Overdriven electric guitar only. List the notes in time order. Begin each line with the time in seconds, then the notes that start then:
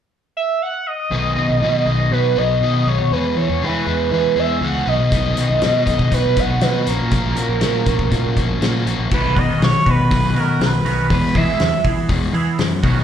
1.11 B2 D#3 F#3 B3 D#4 B4
1.36 F#3 B3 D#4 B4
1.61 B2 D#3 F#3 B3 D#4 B4
1.86 F#3 B3 D#4 B4
2.11 F#3 B3 D#4 B4
2.36 F#3 B3 D#4 B4
2.61 B2 D#3 F#3 B3 D#4 B4
2.86 F#3 B3 D#4 B4
3.11 E2 E3 G#3 B3 E4 G#4
3.36 G#3 B3 E4 G#4
3.61 E2 E3 G#3 B3 E4 G#4
3.86 G#3 B3 E4 G#4
4.11 G#3 B3 E4 G#4
4.36 G#3 B3 E4 G#4
4.61 E2 E3 G#3 B3 E4 G#4
4.86 B2 D#3 F#3 B3 D#4 B4
5.10 B2 D#3 F#3 B3 D#4 B4
5.36 F#3 B3 D#4 B4
5.61 B2 D#3 F#3 B3 D#4 B4
5.86 F#3 B3 D#4 B4
6.11 F#3 B3 D#4 B4
6.36 F#3 B3 D#4 B4
6.60 B2 D#3 F#3 B3 D#4 B4
6.86 A#3 C#4 F#4 A#4
7.11 A#3 C#4 F#4 A#4
7.36 C#4 F#4 A#4
7.61 A#3 C#4 F#4 A#4
7.86 C#4 F#4 A#4
8.11 A#3 C#4 F#4 A#4
8.36 C#4 F#4 A#4
8.61 A#3 C#4 F#4 A#4
8.86 C#4 F#4 A#4
9.12 B2 D#3 F#3
9.37 B2 D#3
9.62 B2 D#3
9.87 B2 D#3
10.11 B2 D#3 F#3
10.37 B2 D#3
10.61 B2 D#3
10.86 B2 D#3
11.10 E2 E3 G#3
11.34 E2 E3 G#3
11.59 E2 E3
11.85 E2 E3
12.09 E2 E3 G#3
12.34 E2 E3
12.59 E2 E3
12.83 B2 D#3 F#3